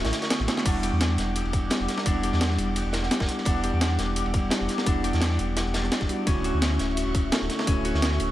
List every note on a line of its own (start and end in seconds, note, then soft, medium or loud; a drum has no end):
0.00 0.28 D3 medium
0.00 0.47 A3 medium
0.00 0.47 C#4 medium
0.00 0.72 C#4 medium
0.00 0.48 D4 medium
0.00 0.48 E4 medium
0.00 0.30 F#4 loud
0.00 0.62 F#4 medium
0.00 0.89 F#4 medium
0.00 0.68 A4 medium
0.00 0.62 E5 medium
0.00 0.62 C#6 medium
0.05 0.12 A1 loud
0.05 snare loud
0.05 closed hi-hat soft
0.05 ride medium
0.12 snare loud
0.12 closed hi-hat medium
0.12 ride medium
0.22 snare medium
0.22 closed hi-hat soft
0.22 ride medium
0.30 snare loud
0.30 closed hi-hat medium
0.30 ride medium
0.40 0.47 A1 loud
0.40 snare soft
0.47 0.63 A3 medium
0.47 0.63 C#4 medium
0.47 0.64 D4 medium
0.47 0.64 E4 medium
0.47 0.64 F#4 medium
0.47 snare soft
0.47 snare medium
0.47 closed hi-hat medium
0.47 ride medium
0.57 snare medium
0.64 0.91 E1 medium
0.64 1.68 G3 medium
0.64 6.23 G3 medium
0.64 1.68 B3 medium
0.64 1.69 D4 medium
0.64 1.00 D4 medium
0.64 1.69 E4 medium
0.64 6.23 F#5 medium
0.64 6.23 D6 medium
0.64 kick loud
0.64 closed hi-hat loud
0.64 ride medium
0.64 crash medium
0.68 1.70 F#5 loud
0.83 1.35 G4 medium
0.83 closed hi-hat medium
0.83 ride medium
0.92 1.17 E2 loud
1.01 2.05 D4 medium
1.01 snare loud
1.01 closed hi-hat medium
1.01 ride medium
1.18 1.44 E1 medium
1.18 snare soft
1.18 closed hi-hat medium
1.18 ride medium
1.36 2.23 G4 medium
1.36 closed hi-hat medium
1.36 ride medium
1.45 1.70 E1 medium
1.45 ride soft
1.53 kick loud
1.53 closed hi-hat medium
1.53 ride medium
1.70 2.03 G3 medium
1.70 2.04 B3 medium
1.70 2.04 D4 medium
1.70 2.04 E4 medium
1.70 2.05 G4 medium
1.70 snare loud
1.70 closed hi-hat medium
1.70 ride medium
1.80 1.88 E1 medium
1.80 ride soft
1.88 snare soft
1.88 closed hi-hat medium
1.88 ride medium
1.98 snare medium
2.04 2.31 E1 medium
2.04 3.08 G3 medium
2.04 3.09 B3 medium
2.04 2.41 D4 loud
2.04 3.09 D4 medium
2.04 3.10 E4 medium
2.04 kick loud
2.04 closed hi-hat medium
2.04 ride medium
2.08 3.10 F#5 loud
2.23 2.76 G4 loud
2.23 closed hi-hat medium
2.23 ride medium
2.33 2.57 E2 loud
2.33 snare soft
2.41 3.46 D4 medium
2.41 snare loud
2.41 closed hi-hat medium
2.41 ride medium
2.50 snare soft
2.58 2.84 E1 medium
2.58 closed hi-hat medium
2.58 ride medium
2.76 3.63 G4 medium
2.76 closed hi-hat medium
2.76 ride medium
2.85 3.10 E1 medium
2.93 snare loud
2.93 closed hi-hat medium
2.93 ride medium
3.03 snare soft
3.10 3.43 G3 medium
3.10 3.44 B3 medium
3.10 3.44 D4 medium
3.10 3.45 E4 medium
3.10 3.45 G4 medium
3.10 snare soft
3.10 snare loud
3.10 closed hi-hat medium
3.10 ride medium
3.20 3.28 E1 loud
3.20 kick loud
3.20 snare loud
3.20 ride medium
3.29 snare soft
3.29 closed hi-hat medium
3.38 snare soft
3.38 ride medium
3.44 3.72 E1 loud
3.44 4.49 G3 medium
3.44 4.49 B3 medium
3.44 3.81 D4 loud
3.44 4.50 D4 medium
3.44 4.50 E4 medium
3.44 kick loud
3.44 closed hi-hat medium
3.44 ride medium
3.48 4.51 F#5 loud
3.63 4.16 G4 loud
3.63 closed hi-hat medium
3.63 ride medium
3.73 3.98 E2 loud
3.81 4.86 D4 medium
3.81 snare loud
3.81 closed hi-hat medium
3.81 ride medium
3.99 4.24 E1 medium
3.99 snare medium
3.99 closed hi-hat medium
3.99 ride medium
4.16 5.04 G4 medium
4.16 closed hi-hat medium
4.16 ride medium
4.26 4.50 E1 medium
4.26 ride soft
4.34 kick loud
4.34 closed hi-hat medium
4.34 ride medium
4.50 4.83 G3 medium
4.50 4.84 B3 medium
4.50 4.85 D4 medium
4.50 4.85 E4 medium
4.50 4.85 G4 medium
4.50 snare loud
4.50 closed hi-hat medium
4.50 ride medium
4.61 4.68 E1 loud
4.61 ride soft
4.68 snare soft
4.68 closed hi-hat medium
4.68 ride medium
4.78 snare medium
4.84 5.12 E1 loud
4.84 5.89 G3 medium
4.84 5.89 B3 medium
4.84 5.21 D4 loud
4.84 5.90 D4 medium
4.84 5.90 E4 medium
4.84 kick loud
4.84 closed hi-hat medium
4.84 ride medium
4.89 5.91 F#5 loud
5.04 5.56 G4 loud
5.04 closed hi-hat medium
5.04 ride medium
5.13 5.38 E2 loud
5.13 snare medium
5.13 closed hi-hat soft
5.21 5.74 D4 medium
5.21 snare loud
5.21 closed hi-hat medium
5.21 ride medium
5.30 snare soft
5.39 5.65 E1 medium
5.39 closed hi-hat medium
5.39 ride medium
5.57 6.51 G4 medium
5.57 snare loud
5.57 closed hi-hat medium
5.57 ride medium
5.66 5.91 E1 medium
5.74 5.91 D4 medium
5.74 snare loud
5.74 closed hi-hat medium
5.74 ride medium
5.83 snare soft
5.92 6.33 D4 medium
5.92 snare loud
5.92 closed hi-hat medium
5.92 ride medium
6.01 6.09 E1 medium
6.01 kick loud
6.01 snare medium
6.08 6.24 G3 medium
6.08 6.25 B3 medium
6.08 6.25 D4 medium
6.08 6.25 E4 medium
6.08 6.26 F#4 medium
6.08 closed hi-hat medium
6.08 ride medium
6.24 6.52 D1 medium
6.24 7.30 D3 medium
6.24 7.29 A3 medium
6.24 7.30 C#4 medium
6.24 6.62 C#4 medium
6.24 7.31 E4 medium
6.24 8.31 F#4 medium
6.24 8.31 E5 medium
6.24 8.31 C#6 medium
6.24 kick loud
6.24 closed hi-hat medium
6.24 ride medium
6.29 7.31 F#4 loud
6.44 6.97 F#4 loud
6.44 closed hi-hat medium
6.44 ride medium
6.54 6.78 D2 medium
6.62 7.67 C#4 medium
6.62 snare loud
6.62 closed hi-hat medium
6.62 ride loud
6.79 7.05 D1 medium
6.79 snare medium
6.79 closed hi-hat medium
6.79 ride medium
6.97 7.84 F#4 medium
6.97 closed hi-hat medium
6.97 ride medium
7.06 7.31 D1 medium
7.06 ride soft
7.14 kick loud
7.14 closed hi-hat medium
7.14 ride medium
7.31 7.64 A3 medium
7.31 7.65 C#4 medium
7.31 7.65 D4 medium
7.31 7.66 E4 medium
7.31 7.66 A4 medium
7.31 snare loud
7.31 closed hi-hat medium
7.31 ride medium
7.41 7.49 D1 medium
7.41 ride soft
7.49 snare soft
7.49 closed hi-hat medium
7.49 ride medium
7.59 snare soft
7.59 snare medium
7.65 7.93 D1 loud
7.65 8.31 D3 medium
7.65 8.31 A3 medium
7.65 8.31 C#4 medium
7.65 8.02 C#4 loud
7.65 8.31 E4 medium
7.65 kick loud
7.65 closed hi-hat medium
7.65 ride medium
7.69 8.31 F#4 loud
7.85 8.31 F#4 loud
7.85 closed hi-hat medium
7.85 ride medium
7.94 8.19 D2 medium
7.94 snare medium
8.02 8.31 C#4 medium
8.02 snare loud
8.02 closed hi-hat medium
8.02 ride medium
8.12 snare soft
8.20 8.31 D1 medium
8.20 closed hi-hat medium
8.20 ride medium